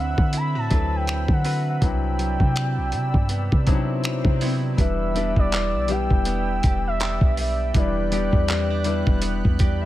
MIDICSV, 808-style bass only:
0, 0, Header, 1, 2, 480
1, 0, Start_track
1, 0, Key_signature, 1, "minor"
1, 0, Tempo, 740741
1, 1178, Time_signature, 4, 2, 24, 8
1, 6385, End_track
2, 0, Start_track
2, 0, Title_t, "808-style bass"
2, 0, Program_c, 0, 38
2, 0, Note_on_c, 0, 38, 96
2, 99, Note_off_c, 0, 38, 0
2, 116, Note_on_c, 0, 50, 103
2, 360, Note_on_c, 0, 45, 91
2, 370, Note_off_c, 0, 50, 0
2, 455, Note_off_c, 0, 45, 0
2, 461, Note_on_c, 0, 38, 104
2, 824, Note_off_c, 0, 38, 0
2, 832, Note_on_c, 0, 50, 93
2, 1162, Note_off_c, 0, 50, 0
2, 1178, Note_on_c, 0, 36, 113
2, 1542, Note_off_c, 0, 36, 0
2, 1556, Note_on_c, 0, 48, 102
2, 1799, Note_on_c, 0, 35, 93
2, 1808, Note_off_c, 0, 48, 0
2, 1899, Note_on_c, 0, 48, 94
2, 1909, Note_off_c, 0, 35, 0
2, 2031, Note_off_c, 0, 48, 0
2, 2035, Note_on_c, 0, 43, 100
2, 2267, Note_off_c, 0, 43, 0
2, 2284, Note_on_c, 0, 48, 99
2, 2741, Note_off_c, 0, 48, 0
2, 2753, Note_on_c, 0, 48, 103
2, 3082, Note_off_c, 0, 48, 0
2, 3098, Note_on_c, 0, 28, 109
2, 3462, Note_off_c, 0, 28, 0
2, 3477, Note_on_c, 0, 28, 98
2, 3720, Note_on_c, 0, 35, 98
2, 3730, Note_off_c, 0, 28, 0
2, 3947, Note_off_c, 0, 35, 0
2, 3957, Note_on_c, 0, 28, 106
2, 4284, Note_off_c, 0, 28, 0
2, 4302, Note_on_c, 0, 28, 101
2, 4664, Note_off_c, 0, 28, 0
2, 4674, Note_on_c, 0, 35, 101
2, 5002, Note_off_c, 0, 35, 0
2, 5020, Note_on_c, 0, 28, 114
2, 5383, Note_off_c, 0, 28, 0
2, 5397, Note_on_c, 0, 40, 92
2, 5858, Note_off_c, 0, 40, 0
2, 5877, Note_on_c, 0, 28, 102
2, 6108, Note_off_c, 0, 28, 0
2, 6123, Note_on_c, 0, 40, 101
2, 6385, Note_off_c, 0, 40, 0
2, 6385, End_track
0, 0, End_of_file